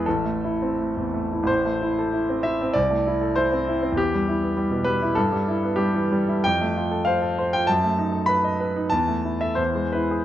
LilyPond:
\new Staff \with { instrumentName = "Grand piano" } { \time 2/4 \key a \minor \tempo 4 = 97 << { a'4 r4 | c''4. e''8 | d''4 c''4 | g'4. b'8 |
a'4 g'4 | g''4 f''8. g''16 | a''4 b''4 | a''8. e''16 c''8 b'8 | } \\ { a,,16 a16 e'16 c'16 a16 e,16 a16 e'16 | a,,16 a16 e'16 a'16 e'16 c'16 e'16 c'16 | c,16 a16 e'16 a'16 e'16 c'16 e'16 c'16 | e,16 g16 e'16 b16 g16 b,16 g16 e'16 |
g,16 g16 e'16 b16 g16 e16 g16 e'16 | f,16 a16 f'16 a'16 c''16 a'16 c''16 f'16 | fis,16 a16 dis'16 a'16 b'16 dis''16 b'16 dis'16 | e,16 a16 e'16 a'16 e,16 gis16 e'16 gis'16 | } >> }